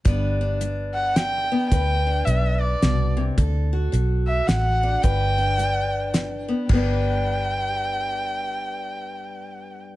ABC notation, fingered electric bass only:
X:1
M:3/4
L:1/8
Q:"Swing" 1/4=108
K:G
V:1 name="Fingered electric bass" clef=bass
G,,,6 | D,,2 B,,,2 C,,2 | D,,2 B,,,2 A,,,2 | G,,,6 |
G,,,6- | G,,,6 |]